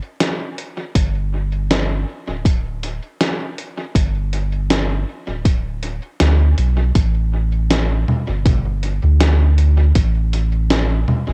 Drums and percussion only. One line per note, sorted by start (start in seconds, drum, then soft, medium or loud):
0.20 snare medium
0.20 closed hi-hat medium
0.58 closed hi-hat soft
0.95 kick loud
0.95 closed hi-hat soft
1.71 snare medium
1.71 closed hi-hat soft
2.45 kick loud
2.45 closed hi-hat soft
2.83 closed hi-hat soft
3.21 snare medium
3.21 closed hi-hat medium
3.58 closed hi-hat soft
3.95 kick medium
3.95 closed hi-hat soft
4.33 closed hi-hat soft
4.70 snare medium
4.70 closed hi-hat soft
5.45 kick loud
5.45 closed hi-hat soft
5.83 closed hi-hat soft
6.20 snare medium
6.20 closed hi-hat soft
6.58 closed hi-hat soft
6.95 kick medium
6.95 closed hi-hat soft
7.71 snare medium
7.71 closed hi-hat soft
8.08 low conga medium
8.45 kick loud
8.45 closed hi-hat soft
8.45 low conga medium
8.83 closed hi-hat soft
9.20 snare medium
9.20 closed hi-hat soft
9.58 closed hi-hat soft
9.95 kick medium
9.95 closed hi-hat soft
10.33 closed hi-hat soft
10.70 snare medium
10.70 closed hi-hat soft
11.08 low conga medium